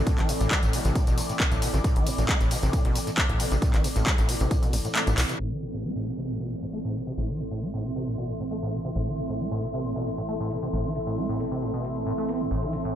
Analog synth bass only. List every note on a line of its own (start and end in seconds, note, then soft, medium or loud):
0.18 0.25 A1 loud
0.40 0.47 A1 medium
0.63 0.69 A1 medium
0.85 0.92 A1 loud
1.07 1.14 A1 loud
1.52 1.58 C2 loud
1.74 1.80 A1 loud
1.96 2.03 A1 loud
2.18 2.25 A1 medium
2.40 2.47 A1 medium
2.62 2.69 A1 medium
2.85 2.91 A1 loud
3.29 3.36 C2 loud
3.51 3.58 A1 loud
3.74 3.80 A1 loud
3.96 4.03 A1 medium
4.18 4.25 A1 medium
4.40 4.47 A1 loud
4.73 4.81 A1 medium
5.07 5.14 A1 loud
5.17 5.25 C2 loud
5.40 7.15 A1 medium
7.18 8.93 A1 medium
8.95 10.71 A1 medium
10.73 12.49 A1 medium
12.51 12.95 A1 medium